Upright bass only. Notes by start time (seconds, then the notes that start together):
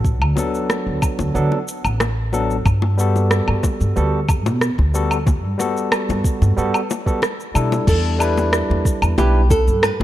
Already playing: A1
0.21 D2
0.87 D2
1.19 D2
1.35 D2
1.85 A1
2.66 G2
3.48 G2
3.81 G2
3.97 D2
4.46 B2
4.78 D2
5.44 G2
6.09 G2
6.42 G2
6.57 G2
7.55 B2
7.87 E2
8.70 E2
9.02 E2
9.18 B1
9.67 G2
10.00 B1